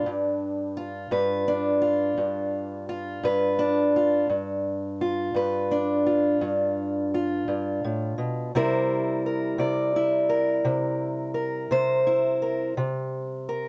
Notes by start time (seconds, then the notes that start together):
Already playing: D4 B4
0.06 G2
0.77 F4
1.11 G2 B4
1.48 D4
1.82 F4
2.18 G2
2.89 F4
3.23 G2 B4
3.59 D4
3.96 F4
4.30 G2
5.01 F4
5.34 G2 B4
5.71 D4
6.06 F4
6.41 G2
7.14 F4
7.48 G2
7.84 A2
8.18 B2
8.55 C3 G3 E4 A#4 C5
9.26 A#4
9.58 C3 D5
9.96 E4
10.29 A#4
10.65 C3
11.34 A#4
11.71 C3 C5
12.07 E4
12.42 A#4
12.77 C3
13.49 A#4